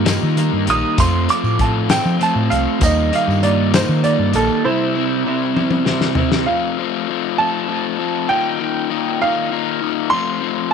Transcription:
Already playing: G2 D#3
0.05 G3 A#3 D#4 F4 G4, snare, closed hi-hat, tambourine
0.23 D#3
0.36 D#3 G3 A#3 D#4 F4 G4, closed hi-hat, tambourine
0.53 G2
0.66 A#1 G3 A#3 D#4 F4 G4 D#6, closed hi-hat, tambourine
0.98 F2 F3 A3 C4 F4 C6, kick, closed hi-hat, tambourine
1.29 A3 C4 F4 D6, closed hi-hat, tambourine
1.44 A2, tambourine
1.59 F3 A3 C4 F4 A5, kick, closed hi-hat
1.90 A3 C4 F4 G5, snare, closed hi-hat, tambourine
2.05 F3
2.19 F3 A3 C4 F4 A5, closed hi-hat, tambourine
2.35 A2
2.50 C2 A3 C4 F4 F5, closed hi-hat, tambourine
2.81 D#2 D#3 G3 A#3 D#4 F4 D#5, kick, closed hi-hat, tambourine
3.11 G3 A#3 D#4 F4, closed hi-hat, tambourine
3.15 F5
3.28 G2, tambourine
3.41 D#3 G3 A#3 D#4 F4 D5, closed hi-hat
3.72 G3 A#3 D#4 F4 C5, snare, closed hi-hat, tambourine
3.89 D#3
4.03 D#3 G3 A#3 D#4 F4 D5, closed hi-hat, tambourine
4.19 G2
4.33 A#1 G3 A#3 D#4 F4 A4, closed hi-hat, tambourine
4.65 C3 G3 C4 E4 C5
4.95 G3 C4 E4
5.25 C3 G3 C4 E4
5.57 G3 C4 E4, high tom
5.71 high tom
5.85 C3 G3 C4 E4, snare
6.01 snare
6.15 G3 C4 E4, floor tom
6.32 snare
6.46 F3 A3 C4 F4 F5
6.78 F3 A3 C4 F4
7.09 F3 A3 C4 F4
7.38 F3 A3 C4 F4 A5
7.68 F3 A3 C4 F4
7.99 F3 A3 C4 F4
8.29 D#3 A#3 D#4 F4 G5
8.60 D#3 A#3 D#4 F4
8.90 D#3 A#3 D#4 F4
9.21 D#3 A#3 D#4 F4 F5
9.51 D#3 A#3 D#4 F4
9.82 D#3 A#3 D#4 F4
10.10 F3 A3 C4 C6
10.14 F4
10.42 F3 A3 C4 F4

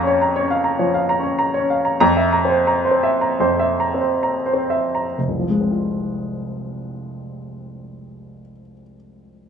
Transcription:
Already playing: F2 F5 A#5
0.03 C#4
0.07 C#5
0.22 A#5
0.36 C#5
0.40 C#4
0.50 F5
0.64 A#5
0.79 F3 C#5
0.94 F5
1.09 A#5
1.19 C#4
1.23 C#5
1.39 A#5
1.54 C#5
1.59 C#4
1.70 F5
1.85 A#5
2.00 F2 A#5
2.17 E5
2.33 A#5
2.45 C4
2.50 C5
2.67 A#5
2.85 C5
2.91 C4
3.03 E5
3.21 A#5
3.40 F2 C5
3.60 E5
3.80 A#5
3.94 C4
4.01 C5
4.23 A#5
4.46 C5
4.53 C4
4.70 E5
4.95 A#5
5.18 F1
5.29 C2
5.39 F3
5.50 G#3
5.61 C4
5.71 F4

